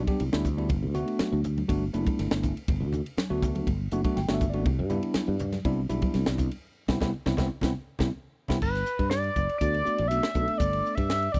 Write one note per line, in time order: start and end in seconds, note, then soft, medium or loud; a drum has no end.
0.07 0.23 G3 medium
0.07 0.22 B3 medium
0.07 0.23 D4 medium
0.07 0.23 G4 medium
0.07 kick medium
0.07 ride medium
0.07 high conga medium
0.20 0.30 C2 medium
0.20 ride medium
0.32 0.72 D2 medium
0.32 0.47 G3 medium
0.32 0.47 B3 medium
0.32 0.47 D4 medium
0.32 0.47 E4 medium
0.32 snare medium
0.45 kick medium
0.45 hi-hat pedal medium
0.45 ride medium
0.45 low conga medium
0.57 0.70 G3 medium
0.57 0.69 B3 medium
0.57 0.70 D4 medium
0.57 0.70 E4 medium
0.57 ride medium
0.69 0.84 G1 medium
0.69 kick loud
0.69 ride medium
0.69 low conga medium
0.83 1.02 D2 medium
0.94 1.40 A3 medium
0.94 1.39 B3 medium
0.94 1.40 D4 medium
0.94 1.39 F#4 loud
0.94 hi-hat pedal medium
0.94 ride medium
0.94 low conga medium
1.08 ride medium
1.19 muted fretless electric bass stroke soft
1.19 snare loud
1.19 ride medium
1.19 high conga medium
1.32 1.62 D2 medium
1.44 hi-hat pedal medium
1.44 ride medium
1.44 low conga medium
1.58 ride medium
1.58 high conga medium
1.68 1.89 G1 medium
1.68 1.84 A3 medium
1.68 1.84 B3 medium
1.68 1.84 D4 medium
1.68 1.84 F#4 medium
1.68 kick medium
1.68 ride medium
1.93 2.04 F#1 medium
1.93 2.54 A3 medium
1.93 2.54 B3 medium
1.93 2.54 D4 medium
1.93 2.54 E4 medium
1.93 hi-hat pedal medium
1.93 ride medium
2.07 kick medium
2.07 ride medium
2.07 high conga medium
2.19 2.29 G1 medium
2.19 snare soft
2.19 ride medium
2.31 2.51 G1 medium
2.31 snare loud
2.43 kick medium
2.43 hi-hat pedal medium
2.43 ride medium
2.43 low conga medium
2.57 ride medium
2.68 2.82 G1 medium
2.68 kick loud
2.68 ride medium
2.68 low conga medium
2.80 3.00 D2 medium
2.93 hi-hat pedal medium
2.93 ride soft
2.93 low conga medium
3.06 ride medium
3.17 muted fretless electric bass stroke soft
3.17 snare loud
3.17 ride medium
3.17 high conga medium
3.30 3.60 D2 medium
3.30 3.67 A3 medium
3.30 3.67 B3 medium
3.30 3.67 D4 medium
3.30 3.67 F#4 medium
3.42 kick medium
3.42 hi-hat pedal medium
3.42 ride medium
3.42 low conga medium
3.55 ride medium
3.55 high conga medium
3.67 3.87 G1 medium
3.67 kick medium
3.67 ride medium
3.91 4.02 F#1 medium
3.91 4.00 A3 medium
3.91 4.00 B3 medium
3.91 4.00 D4 medium
3.91 4.00 F#4 loud
3.91 hi-hat pedal medium
3.91 ride medium
4.04 4.19 A3 medium
4.04 4.20 B3 medium
4.04 4.20 D4 medium
4.04 4.19 F#4 medium
4.04 kick medium
4.04 ride medium
4.04 high conga medium
4.16 4.27 G1 medium
4.16 4.32 G5 medium
4.16 snare soft
4.16 ride medium
4.29 4.66 G1 medium
4.29 4.44 A3 medium
4.29 4.44 B3 medium
4.29 4.44 D4 medium
4.29 4.44 F#4 medium
4.29 snare medium
4.34 4.49 E5 medium
4.41 kick medium
4.41 hi-hat pedal medium
4.41 ride medium
4.41 low conga medium
4.50 4.65 D5 medium
4.50 ride medium
4.54 4.66 A3 medium
4.54 4.66 B3 medium
4.54 4.66 D4 medium
4.54 4.66 F#4 medium
4.65 4.81 C2 medium
4.65 kick loud
4.65 ride medium
4.65 low conga medium
4.79 4.99 G2 loud
4.90 5.35 G3 medium
4.90 5.35 B3 medium
4.90 5.35 D4 medium
4.90 5.35 E4 medium
4.90 hi-hat pedal medium
4.90 ride soft
4.90 low conga medium
5.03 ride medium
5.14 muted fretless electric bass stroke soft
5.14 snare medium
5.14 ride medium
5.14 high conga medium
5.28 5.57 G2 medium
5.39 hi-hat pedal medium
5.39 ride medium
5.39 low conga medium
5.52 snare soft
5.52 ride medium
5.52 high conga medium
5.65 5.85 C2 medium
5.65 5.81 G3 medium
5.65 5.80 B3 medium
5.65 5.80 D4 medium
5.65 5.80 E4 medium
5.65 kick medium
5.65 ride medium
5.89 6.00 B1 medium
5.89 6.50 G3 medium
5.89 6.50 B3 medium
5.89 6.50 D4 medium
5.89 6.50 E4 medium
5.89 hi-hat pedal medium
5.89 ride medium
6.02 kick medium
6.02 ride medium
6.02 high conga medium
6.14 6.25 C2 medium
6.14 snare soft
6.14 ride medium
6.26 6.47 C2 medium
6.26 snare loud
6.38 kick medium
6.38 hi-hat pedal medium
6.38 ride medium
6.38 low conga medium
6.51 ride medium
6.88 6.98 C2 medium
6.88 6.98 B3 medium
6.88 6.98 C4 medium
6.88 6.98 E4 medium
6.88 kick medium
6.88 snare medium
6.88 low conga medium
7.01 7.11 C2 medium
7.01 7.10 B3 medium
7.01 7.10 C4 medium
7.01 7.10 E4 medium
7.01 kick medium
7.01 snare medium
7.01 low conga medium
7.26 7.35 C2 medium
7.26 7.35 B3 medium
7.26 7.35 C4 medium
7.26 7.35 E4 medium
7.26 kick medium
7.26 snare medium
7.26 low conga medium
7.37 7.48 C2 medium
7.37 7.47 B3 medium
7.37 7.47 C4 medium
7.37 7.47 E4 medium
7.37 kick medium
7.37 snare medium
7.37 low conga loud
7.61 7.73 C2 medium
7.61 7.72 B3 medium
7.61 7.72 C4 loud
7.61 7.72 E4 medium
7.61 kick medium
7.61 snare medium
7.61 low conga medium
7.99 8.10 C2 medium
7.99 8.08 B3 medium
7.99 8.08 C4 medium
7.99 8.08 E4 medium
7.99 kick medium
7.99 snare medium
7.99 low conga medium
8.48 8.59 C2 medium
8.48 8.57 B3 loud
8.48 8.57 C4 loud
8.48 8.57 E4 loud
8.48 kick medium
8.48 snare medium
8.48 low conga medium
8.62 8.82 G1 medium
8.62 9.08 B4 medium
8.62 kick medium
8.62 crash medium
8.75 snare soft
8.75 ride medium
8.86 hi-hat pedal medium
8.99 9.29 G2 medium
8.99 kick medium
8.99 ride soft
9.10 9.57 D5 loud
9.10 snare medium
9.10 hi-hat pedal medium
9.10 ride medium
9.24 ride soft
9.36 9.46 F#1 medium
9.36 kick medium
9.36 hi-hat pedal medium
9.49 ride medium
9.58 9.81 D2 medium
9.58 9.76 A3 medium
9.58 9.76 B3 medium
9.58 9.76 D4 medium
9.58 9.77 F#4 medium
9.58 10.09 D5 loud
9.58 kick medium
9.58 hi-hat pedal medium
9.58 ride medium
9.74 ride medium
9.85 10.01 A3 medium
9.85 10.01 B3 medium
9.85 10.01 D4 medium
9.85 10.01 F#4 medium
9.85 muted fretless electric bass stroke soft
9.85 hi-hat pedal medium
9.98 10.19 B1 medium
9.98 ride medium
10.08 10.26 A3 medium
10.08 10.26 B3 medium
10.08 10.26 D4 medium
10.08 10.26 F#4 medium
10.08 10.59 E5 loud
10.08 hi-hat pedal medium
10.08 ride medium
10.23 snare medium
10.23 ride medium
10.35 10.46 B1 medium
10.35 10.95 A3 medium
10.35 10.95 B3 medium
10.35 10.95 D4 medium
10.35 10.95 A4 medium
10.35 kick medium
10.35 hi-hat pedal medium
10.48 muted fretless electric bass stroke soft
10.48 ride medium
10.58 10.80 G1 medium
10.58 10.96 D5 loud
10.58 kick loud
10.58 hi-hat pedal medium
10.58 ride medium
10.73 ride medium
10.86 hi-hat pedal medium
10.95 11.27 G2 medium
10.95 11.33 E5 loud
10.95 kick medium
10.95 ride medium
11.10 snare medium
11.10 hi-hat pedal medium
11.10 ride medium
11.23 ride medium
11.32 11.40 F#1 medium
11.32 11.40 D5 loud
11.32 kick medium
11.32 hi-hat pedal medium